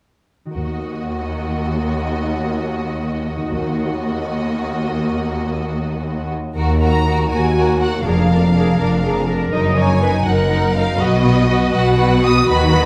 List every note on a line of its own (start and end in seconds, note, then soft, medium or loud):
0.45 3.36 D#3 soft
0.45 3.40 D#4 soft
0.45 3.45 F#4 soft
0.51 3.49 A#4 soft
0.55 3.50 D#2 soft
0.55 1.02 D#2 soft
0.55 3.51 A#3 soft
0.55 3.51 F#4 soft
0.55 3.51 D#5 soft
3.37 6.49 D#3 soft
3.42 7.05 D#4 soft
3.46 7.36 F#4 soft
3.50 6.31 A#3 soft
3.50 7.40 A#4 soft
3.54 4.00 D#2 soft
3.54 6.31 D#2 soft
3.54 6.31 F#4 soft
3.54 6.31 D#5 soft
6.56 7.22 D#2 medium
6.56 7.22 D#2 soft
6.56 8.07 D#3 soft
6.56 6.80 F#4 soft
6.56 6.80 A#4 soft
6.80 7.30 A#3 soft
6.80 7.05 F#4 soft
6.80 7.05 A#4 soft
6.80 7.27 A#5 medium
7.06 8.08 D#4 soft
7.06 7.29 F#4 soft
7.06 7.29 A#4 soft
7.31 7.97 D#2 soft
7.31 7.80 A#3 soft
7.31 7.55 F#4 soft
7.31 8.02 F#4 soft
7.31 7.55 A#4 soft
7.31 7.79 G#5 soft
7.56 7.80 F#4 soft
7.56 8.08 F#4 soft
7.56 7.79 A#4 soft
7.80 11.02 A#3 soft
7.80 8.05 F#4 soft
7.80 8.04 A#4 soft
7.80 8.05 F#5 soft
8.05 8.71 F1 soft
8.05 8.71 F2 soft
8.05 9.55 F2 soft
8.05 8.30 D4 soft
8.05 8.30 G#4 soft
8.05 8.30 A#4 soft
8.05 9.26 F5 medium
8.30 8.79 F3 soft
8.30 8.54 D4 soft
8.30 8.38 A#4 soft
8.30 8.54 A#4 soft
8.55 8.78 D4 soft
8.55 9.55 D4 soft
8.55 8.79 G#4 soft
8.55 8.77 A#4 soft
8.79 9.45 F1 soft
8.79 9.45 F2 medium
8.79 9.28 F3 soft
8.79 9.02 D4 soft
8.79 9.02 A#4 soft
8.79 8.88 A#4 soft
9.03 9.27 D4 soft
9.03 9.28 G#4 soft
9.03 9.55 G#4 soft
9.03 9.27 A#4 soft
9.28 9.55 F3 soft
9.28 9.52 D4 soft
9.28 9.52 A#4 soft
9.28 9.53 A#4 soft
9.52 10.18 F#1 medium
9.52 10.18 F#2 medium
9.52 11.02 F#2 soft
9.52 9.76 D#4 soft
9.52 9.76 A#4 soft
9.52 9.78 D#5 soft
9.77 10.26 F#3 soft
9.77 10.00 D#4 soft
9.77 10.01 A#4 soft
9.77 10.02 C#5 soft
9.77 10.23 G#5 medium
10.02 10.24 D#4 soft
10.02 12.72 D#4 soft
10.02 10.24 A#4 soft
10.02 10.10 B4 soft
10.26 10.92 F#1 medium
10.26 10.92 F#2 soft
10.26 10.75 F#3 soft
10.26 10.48 D#4 soft
10.26 10.48 A#4 soft
10.26 10.99 A#4 medium
10.26 10.76 F#5 medium
10.50 10.73 D#4 soft
10.50 11.98 F#4 soft
10.50 10.73 A#4 soft
10.74 11.24 F#3 soft
10.74 10.99 D#4 soft
10.74 10.99 A#4 soft
10.74 11.00 F5 medium
10.99 11.66 B1 medium
10.99 11.65 B2 medium
10.99 12.50 B2 medium
10.99 11.22 F#4 soft
10.99 12.85 F#4 medium
10.99 11.22 B4 soft
10.99 11.74 D#5 medium
11.23 11.73 F#3 soft
11.23 11.47 F#4 soft
11.23 11.47 B4 soft
11.48 12.85 B3 soft
11.48 11.71 F#4 soft
11.48 11.71 B4 soft
11.73 12.39 B1 medium
11.73 12.39 B2 medium
11.73 12.22 F#3 soft
11.73 11.96 F#4 soft
11.73 11.96 B4 soft
11.73 12.23 F#5 medium
11.97 12.21 F#4 soft
11.97 12.85 F#4 soft
11.97 12.21 B4 soft
12.23 12.85 F#3 soft
12.23 12.46 F#4 soft
12.23 12.46 B4 soft
12.23 12.48 D#6 medium
12.47 12.85 D#2 medium
12.47 12.85 D#3 medium
12.47 12.70 F#4 soft
12.47 12.70 B4 soft
12.47 12.85 B5 medium
12.71 12.85 D#4 soft
12.71 12.85 F#4 soft
12.71 12.85 B4 soft